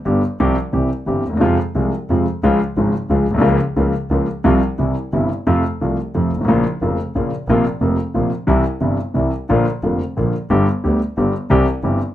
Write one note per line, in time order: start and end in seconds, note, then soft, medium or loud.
0.05 0.21 G1 medium
0.05 0.20 G2 medium
0.05 0.20 D3 soft
0.05 0.20 G3 soft
0.05 0.21 B3 soft
0.05 0.21 G4 medium
0.40 0.54 C2 medium
0.40 0.55 C2 medium
0.40 0.54 C3 medium
0.40 0.54 F3 medium
0.40 0.55 G3 medium
0.40 0.54 C4 medium
0.40 0.55 G4 medium
0.73 0.88 C2 soft
0.73 0.88 C3 soft
0.73 0.88 E3 soft
0.73 0.88 G3 soft
0.73 0.88 C4 soft
0.73 0.88 G4 soft
1.06 1.22 G1 soft
1.06 1.22 G1 medium
1.06 1.22 G2 soft
1.06 1.22 E3 soft
1.06 1.22 G3 soft
1.06 1.22 C4 soft
1.06 1.22 G4 soft
1.24 1.40 D#2 soft
1.29 1.34 D2 soft
1.29 1.38 D#2 soft
1.37 1.42 E2 medium
1.37 1.56 C3 medium
1.41 1.56 F2 medium
1.41 1.56 F3 medium
1.41 1.56 G#3 medium
1.41 1.56 F4 medium
1.75 1.90 C2 soft
1.75 1.91 C2 soft
1.75 1.90 C3 soft
1.75 1.90 F3 soft
1.75 1.91 G#3 soft
1.75 1.91 F4 soft
2.10 2.24 F2 medium
2.10 2.25 F2 medium
2.10 2.25 C3 soft
2.10 2.25 F3 soft
2.10 2.25 G#3 soft
2.10 2.25 F4 soft
2.43 2.58 C#2 medium
2.43 2.58 C#3 medium
2.43 2.58 F3 medium
2.43 2.58 G#3 medium
2.43 2.59 F4 medium
2.77 2.92 G#1 medium
2.77 2.91 G#2 medium
2.77 2.92 C#3 soft
2.77 2.91 F3 soft
2.77 2.92 G#3 soft
2.77 2.92 F4 soft
3.10 3.25 C#2 medium
3.10 3.25 C#3 medium
3.10 3.24 F3 soft
3.10 3.25 G#3 soft
3.10 3.25 F4 soft
3.27 3.36 A#1 soft
3.27 3.43 B1 medium
3.34 3.39 B1 medium
3.38 3.43 C2 medium
3.38 3.57 C#2 medium
3.38 3.57 C#3 medium
3.38 3.57 F3 medium
3.38 3.57 A#3 medium
3.38 3.57 F4 medium
3.44 3.58 C#2 medium
3.76 3.92 C#2 medium
3.76 3.92 C#3 medium
3.76 3.92 F3 soft
3.76 3.92 A#3 soft
3.76 3.92 F4 medium
4.11 4.25 C#2 medium
4.11 4.25 C#2 soft
4.11 4.26 C#3 medium
4.11 4.25 F3 soft
4.11 4.26 A#3 soft
4.11 4.25 F4 soft
4.44 4.59 C2 medium
4.44 4.59 C3 medium
4.44 4.59 F3 medium
4.44 4.59 G3 medium
4.44 4.60 F4 medium
4.79 4.93 C2 medium
4.79 4.93 C2 soft
4.79 4.93 C3 soft
4.79 4.93 E3 soft
4.79 4.94 G3 soft
4.79 4.94 E4 soft
5.13 5.28 G1 medium
5.13 5.28 G1 soft
5.13 5.28 G2 soft
5.13 5.28 C3 soft
5.13 5.28 E3 soft
5.13 5.28 G3 soft
5.13 5.28 E4 soft
5.47 5.62 F2 medium
5.47 5.62 C3 medium
5.47 5.62 F3 medium
5.47 5.62 A3 medium
5.47 5.62 F4 medium
5.81 5.96 C2 medium
5.81 5.96 C2 soft
5.81 5.96 C3 soft
5.81 5.96 F3 soft
5.81 5.96 A3 soft
5.81 5.96 F4 soft
6.15 6.29 F2 soft
6.15 6.30 F2 soft
6.15 6.29 C3 soft
6.15 6.30 F3 soft
6.15 6.29 A3 soft
6.15 6.30 F4 soft
6.31 6.48 G#1 soft
6.36 6.41 G1 soft
6.41 6.45 G#1 medium
6.41 6.49 A1 medium
6.48 6.63 A#1 medium
6.48 6.63 A#2 medium
6.48 6.63 C#3 medium
6.48 6.63 F3 medium
6.48 6.63 A#3 medium
6.48 6.63 F4 medium
6.82 6.96 F1 medium
6.82 6.96 F1 soft
6.82 6.96 F2 medium
6.82 6.96 C#3 soft
6.82 6.96 F3 soft
6.82 6.96 A#3 soft
6.82 6.96 F4 soft
7.15 7.29 A#1 soft
7.15 7.30 A#1 medium
7.15 7.30 A#2 soft
7.15 7.30 C#3 soft
7.15 7.30 F3 soft
7.15 7.30 A#3 soft
7.15 7.30 F4 soft
7.48 7.63 A#1 medium
7.48 7.63 A#2 medium
7.48 7.63 C3 medium
7.48 7.63 F3 medium
7.48 7.63 A#3 medium
7.48 7.63 F4 medium
7.81 7.96 F1 soft
7.81 7.96 F1 medium
7.81 7.96 F2 soft
7.81 7.95 C3 soft
7.81 7.96 F3 soft
7.81 7.96 A#3 soft
7.81 7.96 F4 soft
8.14 8.29 A#1 soft
8.14 8.29 A#1 medium
8.14 8.29 A#2 soft
8.14 8.29 C3 soft
8.14 8.29 F3 soft
8.14 8.29 A#3 soft
8.14 8.29 F4 soft
8.47 8.62 C2 medium
8.47 8.63 C2 medium
8.47 8.62 C3 medium
8.47 8.62 E3 medium
8.47 8.62 G3 soft
8.47 8.62 E4 medium
8.81 8.96 G1 soft
8.81 8.96 G2 soft
8.81 8.96 C3 soft
8.81 8.96 E3 soft
8.81 8.96 G3 soft
8.81 8.96 E4 soft
9.14 9.30 C2 soft
9.14 9.30 C2 medium
9.14 9.30 C3 soft
9.14 9.30 E3 soft
9.14 9.30 G3 soft
9.14 9.30 E4 soft
9.49 9.64 A#1 medium
9.49 9.65 A#2 medium
9.49 9.64 D3 medium
9.49 9.64 F3 medium
9.49 9.65 A#3 soft
9.49 9.64 F4 medium
9.83 9.98 F1 medium
9.83 9.98 F1 soft
9.83 9.98 F2 soft
9.83 9.98 D3 soft
9.83 9.98 F3 soft
9.83 9.98 A#3 soft
9.83 9.98 F4 soft
10.17 10.32 A#1 soft
10.17 10.32 A#2 soft
10.17 10.32 D3 soft
10.17 10.32 F3 soft
10.17 10.32 A#3 soft
10.17 10.32 F4 soft
10.50 10.65 G1 medium
10.50 10.66 G1 medium
10.50 10.65 G2 medium
10.50 10.65 D3 medium
10.50 10.65 G3 medium
10.50 10.65 B3 medium
10.50 10.65 G4 medium
10.84 10.99 D2 soft
10.84 10.99 D2 medium
10.84 10.98 D3 soft
10.84 10.98 G3 soft
10.84 10.98 B3 soft
10.84 10.98 G4 soft
11.17 11.32 G1 medium
11.17 11.31 G2 soft
11.17 11.32 D3 soft
11.17 11.32 G3 soft
11.17 11.31 B3 soft
11.17 11.32 G4 soft
11.50 11.65 C2 medium
11.50 11.64 C3 medium
11.50 11.64 E3 medium
11.50 11.64 G3 medium
11.50 11.64 C4 medium
11.50 11.65 G4 medium
11.83 11.98 G1 medium
11.83 11.98 G2 soft
11.83 11.98 E3 soft
11.83 11.98 G3 soft
11.83 11.98 C4 soft
11.83 11.98 G4 soft